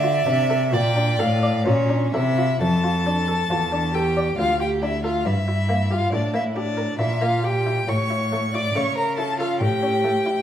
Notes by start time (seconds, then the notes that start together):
Already playing: D3 D5 E5
0.03 F4
0.26 C3 D4
0.50 A4
0.73 A#2 F4 D5 G5
0.96 D4
1.19 A2 A4 F5
1.43 D5
1.66 A#2 C#4 F4 C#5
1.89 D4
2.14 C3 E4 A4 E5
2.38 F4
2.61 F2 A4 A5
2.84 F4
3.06 D4
3.28 A4
3.50 E2 F4
3.72 D4
3.93 G4 A4 G5
4.17 D5
4.37 D2 F4 F5
4.59 F4 G4 G5
4.82 D4 E4 E5
5.03 F4 A4 F5
5.26 G2 E4 E5
5.48 E4
5.69 A#3
5.91 F4 G4 F5
6.12 A2 D4 E4 D5
6.34 A#3 E4 E5
6.56 D4 G4 D5
6.77 A#4
6.99 A#2 E4 E5
7.21 A#3 F4 F5
7.42 G4 G5
7.66 E4
7.87 A2 C#5 C#6
8.10 E4
8.32 A3
8.53 E4 D5 D6
8.75 C#3 A3 C#5 C#6
8.96 A#4 A#5
9.17 E4 A4 A5
9.39 F4 A4 F5
9.60 A2 G4 G5
9.83 C#4
10.04 A3
10.26 E4